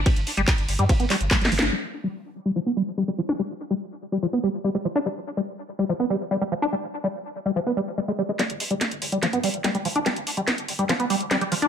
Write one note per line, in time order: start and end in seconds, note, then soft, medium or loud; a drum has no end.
0.06 0.08 G3 medium
0.06 kick loud
0.06 closed hi-hat loud
0.06 ride medium
0.16 0.24 G1 medium
0.16 closed hi-hat medium
0.27 open hi-hat loud
0.37 0.44 G1 medium
0.37 0.41 G3 medium
0.37 closed hi-hat medium
0.48 kick loud
0.48 clap loud
0.48 closed hi-hat medium
0.48 ride medium
0.58 0.65 G1 medium
0.58 closed hi-hat medium
0.68 0.76 G1 loud
0.68 open hi-hat loud
0.79 0.86 G2 medium
0.79 0.84 G3 medium
0.79 closed hi-hat medium
0.89 0.93 F3 medium
0.89 kick loud
0.89 closed hi-hat loud
0.89 ride medium
1.00 1.07 G1 medium
1.00 1.05 B3 medium
1.00 closed hi-hat medium
1.10 1.16 G3 medium
1.10 clap medium
1.10 open hi-hat loud
1.21 1.28 G1 medium
1.21 closed hi-hat medium
1.31 1.37 G3 medium
1.31 kick loud
1.31 snare medium
1.31 clap loud
1.31 closed hi-hat loud
1.31 ride medium
1.41 1.49 G1 medium
1.41 1.44 G3 medium
1.41 snare medium
1.41 closed hi-hat medium
1.52 1.59 G1 medium
1.52 1.54 F3 medium
1.52 open hi-hat loud
1.59 1.69 G1 medium
1.59 1.66 D4 loud
1.59 snare medium
1.59 closed hi-hat medium
1.73 1.75 G3 medium
2.04 2.08 G3 medium
2.46 2.51 G3 medium
2.56 2.60 F3 medium
2.66 2.72 B3 medium
2.77 2.82 G3 medium
2.98 3.03 G3 medium
3.08 3.10 G3 medium
3.18 3.21 F3 medium
3.29 3.33 D4 loud
3.39 3.42 G3 medium
3.71 3.74 G3 medium
4.12 4.18 G3 medium
4.23 4.26 F3 medium
4.33 4.39 B3 medium
4.43 4.49 G3 medium
4.64 4.70 G3 medium
4.75 4.77 G3 medium
4.85 4.87 F3 medium
4.96 4.99 D4 loud
5.06 5.08 G3 medium
5.37 5.41 G3 medium
5.79 5.84 G3 medium
5.89 5.93 F3 medium
6.00 6.05 B3 medium
6.10 6.16 G3 medium
6.31 6.37 G3 medium
6.41 6.44 G3 medium
6.52 6.54 F3 medium
6.62 6.66 D4 loud
6.73 6.75 G3 medium
7.04 7.08 G3 medium
7.46 7.51 G3 medium
7.56 7.60 F3 medium
7.66 7.72 B3 medium
7.77 7.81 G3 medium
7.98 8.00 G3 medium
8.08 8.12 G#3 medium
8.18 8.22 G3 medium
8.29 8.31 G#3 medium
8.39 8.42 G3 medium
8.39 snare soft
8.39 closed hi-hat loud
8.50 8.57 G1 medium
8.50 closed hi-hat medium
8.60 open hi-hat loud
8.71 8.78 G1 medium
8.71 8.74 G3 medium
8.71 closed hi-hat medium
8.81 snare medium
8.81 closed hi-hat medium
8.91 8.99 G1 medium
8.91 closed hi-hat medium
9.02 9.09 G1 loud
9.02 open hi-hat loud
9.12 9.19 G1 medium
9.12 9.18 G3 medium
9.12 closed hi-hat medium
9.23 9.26 F3 medium
9.23 snare medium
9.23 closed hi-hat loud
9.33 9.40 G2 medium
9.33 9.39 B3 medium
9.33 closed hi-hat medium
9.43 9.49 G3 medium
9.43 open hi-hat loud
9.54 9.61 G1 medium
9.54 closed hi-hat medium
9.64 9.70 G3 medium
9.64 snare medium
9.64 closed hi-hat loud
9.75 9.82 G1 medium
9.75 9.77 G3 medium
9.75 closed hi-hat medium
9.85 9.92 G1 medium
9.85 9.87 F3 medium
9.85 open hi-hat loud
9.96 10.03 G1 medium
9.96 9.99 D4 loud
9.96 closed hi-hat medium
10.06 10.08 G3 medium
10.06 snare medium
10.06 closed hi-hat loud
10.16 10.24 G1 medium
10.16 closed hi-hat medium
10.27 open hi-hat loud
10.37 10.44 G1 medium
10.37 10.41 G3 medium
10.37 closed hi-hat medium
10.48 snare medium
10.48 closed hi-hat medium
10.58 10.65 G1 medium
10.58 closed hi-hat medium
10.68 10.76 G1 loud
10.68 open hi-hat loud
10.79 10.86 G2 medium
10.79 10.84 G3 medium
10.79 closed hi-hat medium
10.89 10.93 F3 medium
10.89 snare medium
10.89 closed hi-hat loud
11.00 11.07 G1 medium
11.00 11.05 B3 medium
11.00 closed hi-hat medium
11.10 11.16 G3 medium
11.10 open hi-hat loud
11.21 11.28 G1 medium
11.21 closed hi-hat medium
11.31 11.37 G3 medium
11.31 snare medium
11.31 closed hi-hat loud
11.41 11.49 G1 medium
11.41 11.44 G3 medium
11.41 closed hi-hat medium
11.52 11.59 G1 medium
11.52 11.54 F3 medium
11.52 open hi-hat loud
11.62 11.68 D2 medium
11.62 11.66 D4 loud
11.62 closed hi-hat medium